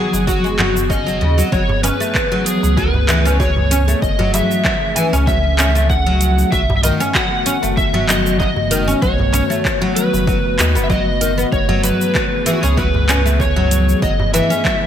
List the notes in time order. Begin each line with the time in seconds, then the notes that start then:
Already playing: D#3 F#3 B3 G#4
0.13 F#1, darbuka ka, shaker
0.27 F#3 F#4, kick, shaker
0.44 G#3, shaker
0.59 F#3, clap, darbuka ka, darbuka dum
0.75 darbuka ka, shaker
0.90 C#4 D#5, kick, shaker
1.07 F#3, shaker
1.21 D#2 C#3
1.38 F#3, shaker
1.52 F#1 E3 F#3 A3 B3 G#4 C#5, kick, shaker
1.69 darbuka dum
1.83 C#4 B4, closed hi-hat, darbuka tek, shaker
2.00 A3, shaker
2.15 kick, clap, shaker
2.32 F#3
2.45 G#4, closed hi-hat, shaker
2.63 C#2, darbuka ka, shaker
2.77 F#3 B4, kick, shaker
2.94 darbuka dum
3.08 E3, clap, closed hi-hat, darbuka tek, shaker
3.25 C#4, shaker
3.40 F#3 C#5, kick, darbuka ka, shaker
3.56 darbuka dum
3.71 C#4, closed hi-hat, shaker
3.88 A3, shaker
4.02 F#1 C#4 D#5, kick, shaker
4.19 F#3, darbuka dum
4.34 E5, closed hi-hat, darbuka tek, shaker
4.51 shaker
4.65 F#3, kick, clap, shaker
4.96 E3 G#5, closed hi-hat, shaker
5.13 C#2 C#4, darbuka ka, darbuka tek, shaker
5.27 F#3 E5, kick, shaker
5.59 C#4, clap, closed hi-hat, darbuka tek, shaker
5.75 A3, darbuka ka, shaker
5.90 F#5, kick, shaker
6.06 F#3
6.21 closed hi-hat, shaker
6.39 shaker
6.52 B1 D#3 F#3 B3 F#4 E5, kick, shaker
6.70 darbuka dum
6.77 E5
6.83 D#3 D#5, closed hi-hat, darbuka tek, shaker
7.00 C#4, shaker
7.14 F#3 F#5, kick, clap, shaker
7.46 C#4, closed hi-hat, shaker
7.62 F#1 A3, darbuka ka, shaker
7.77 E5, kick, shaker
7.93 F#3, darbuka dum
8.08 D#5, clap, closed hi-hat, darbuka tek, shaker
8.27 shaker
8.40 F#3 D#5, kick, darbuka ka, shaker
8.56 darbuka dum
8.71 D#3, closed hi-hat, shaker
8.88 C#4, shaker
9.02 B1 F#3 C#5, kick, shaker
9.19 darbuka dum
9.33 C#4, closed hi-hat, darbuka tek, shaker
9.50 A3, shaker
9.65 kick, clap, shaker
9.82 F#3
9.96 B4, closed hi-hat, shaker
10.13 F#1, darbuka ka, darbuka tek, shaker
10.27 F#3, kick, shaker
10.44 darbuka ka
10.59 D#2 D#4, clap, closed hi-hat, darbuka tek, shaker
10.75 F#1 B3, darbuka ka, shaker
10.83 E5
10.90 F#3 D#5, kick, shaker
11.21 D#3, closed hi-hat, shaker
11.38 B3, shaker
11.52 F#1 E3 G#4 C#5, kick, shaker
11.69 F#3, darbuka dum
11.84 B4, closed hi-hat, darbuka tek, shaker
12.01 shaker
12.15 F#3, kick, clap, shaker
12.46 E3 G#4, closed hi-hat, shaker
12.54 F#4
12.62 C#2 C#4 G#4, darbuka ka, shaker
12.77 F#3 B4, kick, shaker
12.94 darbuka dum
13.09 C#4, clap, closed hi-hat, darbuka tek, shaker
13.26 A3, shaker
13.40 C#5, kick, darbuka ka, shaker
13.56 F#3, darbuka dum
13.71 closed hi-hat, shaker
13.89 shaker
14.02 F#1 F#3 D#5, kick, shaker
14.20 darbuka dum
14.34 E3 E5, closed hi-hat, darbuka tek, shaker
14.50 C#4, shaker
14.65 F#3, kick, clap, shaker